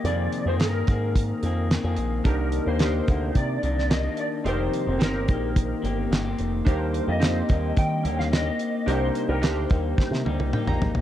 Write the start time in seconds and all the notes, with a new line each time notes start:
0.04 F2 C3 D#3 A#3 C4 G#4 D5, closed hi-hat
0.32 closed hi-hat
0.46 F2 A#3 C4 G#4 C5
0.50 D#3
0.60 G2 A#4, snare, closed hi-hat
0.87 G#2 D#3 A#3 C4 G#4, kick, closed hi-hat
1.16 kick, closed hi-hat
1.43 F2 D#3 A#3 C4 G#4, closed hi-hat
1.71 D#3 A#3 C4 G#4, snare, closed hi-hat
1.84 F2 D#3 A#3 C4 G#4
1.97 A#1, closed hi-hat
2.24 C2 C3 D#3 A#3 D4 D#4 G4 A#4, kick, closed hi-hat
2.52 closed hi-hat
2.66 D#2 D#3 A#3 D4 C5
2.79 D4 D#4 G4 A#4, snare, closed hi-hat
3.07 D2 C3 D#3 A#3 D4, kick, closed hi-hat
3.35 C3 D5, kick, closed hi-hat
3.62 C2 C3 D#3 A#3 D4, closed hi-hat
3.79 snare
3.89 C3 D#3 A#3 D4 D#5, snare, closed hi-hat
4.03 D#3 A#3 D4
4.17 D5, closed hi-hat
4.44 F1 F2 C3 D#3 A#3 C4 D#4 G4 A#4 C5, closed hi-hat
4.73 closed hi-hat
4.86 F1 D#3 A#3 C4 G4
4.99 G1 C4 D#4 G4 A#4 C5, snare, closed hi-hat
5.28 A#1 D#3 A#3 C4 G4, kick, closed hi-hat
5.56 kick, closed hi-hat
5.82 G1 D#3 A#3 C4 G4, closed hi-hat
6.11 G1 D#3 A#3 C4 G4, snare, closed hi-hat
6.25 D#3 A#3 C4 G4
6.38 F1, closed hi-hat
6.65 D#2 D#3 G3 A#3 D4 D#4 G4 A#4 C5, kick, closed hi-hat
6.69 D4 G4
6.94 closed hi-hat
7.08 F2 A#3 G4 D#5
7.20 C4 D#4 G4 C5, snare, closed hi-hat
7.49 D#2 G3 A#3 D4 G4, kick, closed hi-hat
7.77 D#3 G5, kick, closed hi-hat
8.03 D#2 G3 A#3 D4 G4, closed hi-hat
8.19 F5, snare
8.32 G3 A#3 D4 G4 D#5, snare, closed hi-hat
8.46 A#3 G4
8.59 closed hi-hat
8.86 C2 C3 G3 A#3 D4 D#4 G4 A#4 C5, closed hi-hat
9.15 closed hi-hat
9.29 C2 A#3 D#4 G4 A#4
9.42 D2 D4 D#4 G4 A#4 C5, snare, closed hi-hat
9.70 D#2 G3 A#3 D#4 G4, kick, closed hi-hat
9.98 kick, snare
10.11 C3, snare
10.25 D2 G3 A#3 D#4 G4, high tom
10.40 C2, high tom
10.52 G3 A#3 D#4 G4 G5, mid tom
10.66 A#1 A#3 D#4 G4 A#5, mid tom
10.80 G#1, floor tom
10.95 A#1, floor tom